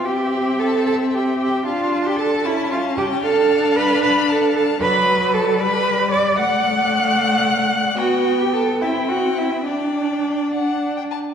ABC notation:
X:1
M:6/8
L:1/16
Q:3/8=75
K:Ddor
V:1 name="Violin"
g4 a2 a2 g2 g2 | f3 g a2 e2 f2 g2 | a4 b2 b2 a2 a2 | [K:G] b4 a2 b4 d'2 |
f'12 | f3 g a2 e2 f2 e2 | d8- d2 z2 |]
V:2 name="Violin"
e12 | a12 | f12 | [K:G] d12- |
d12 | g6 g6 | g6 f3 g a2 |]
V:3 name="Cello"
G4 A2 A2 G2 G2 | F3 G A2 E2 F2 G2 | A4 B2 B2 A2 A2 | [K:G] B4 A2 B4 d2 |
f12 | F3 G A2 E2 F2 E2 | D8- D2 z2 |]
V:4 name="Viola"
C12 | D6 ^C6 | D12 | [K:G] F,6 G,6 |
A,12 | B,6 C6 | D6 D4 z2 |]